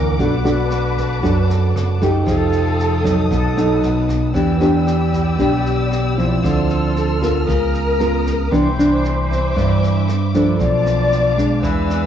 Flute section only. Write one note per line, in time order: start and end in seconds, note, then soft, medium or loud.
0.00 0.15 A#4 loud
0.20 2.00 B4 loud
2.26 3.26 A4 loud
3.30 4.04 A4 loud
4.34 6.39 G4 medium
6.44 7.48 A4 loud
7.48 8.52 A#4 loud
8.52 10.33 C5 loud
10.59 11.60 D5 loud
11.63 12.06 B4 medium